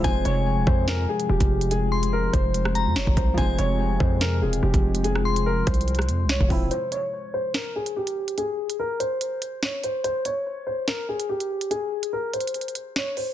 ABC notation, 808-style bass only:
X:1
M:4/4
L:1/16
Q:1/4=144
K:Fm
V:1 name="808-style bass" clef=bass
F,,,2 F,,,3 =E,,, F,,4 z2 E,,, F,,,3- | F,,,6 F,,,4- F,,, F,, F,,, F,,, C,,2 | F,,,2 F,,,4 F,,4 =E,,,2 F,,, F,,,3- | F,,,6 C,,4 F,,3/2 C,,3/2 F,,, =E,,,2 |
z16 | z16 | z16 | z16 |]